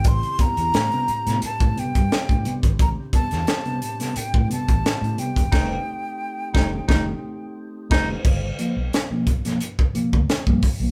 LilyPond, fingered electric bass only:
\new Staff \with { instrumentName = "Fingered electric bass" } { \clef bass \time 4/4 \key g \mixolydian \tempo 4 = 88 a,,16 r8 e,16 a,16 r8 a,16 r16 a,16 r16 g,16 r16 a,16 r16 aes,,16 | a,,16 r8 e,16 r4 r16 a,16 r16 a,,16 r16 a,16 r16 e,,16 | f,,8 r4 f,,8 f,,8 r4 f,,8 | g,,8 r16 b,,16 r8 b,,16 r4 d,16 r16 g,16 r16 b,,16 | }